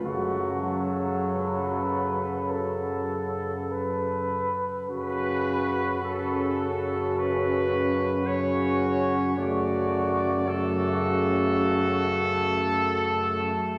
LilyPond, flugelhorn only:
\new Staff \with { instrumentName = "Flugelhorn" } { \time 4/4 \key fis \minor \tempo 4 = 53 fis'4 b'4 a'4 b'4 | fis'4 fis'2 fis'4 | fis'4 fis'2~ fis'8. r16 | }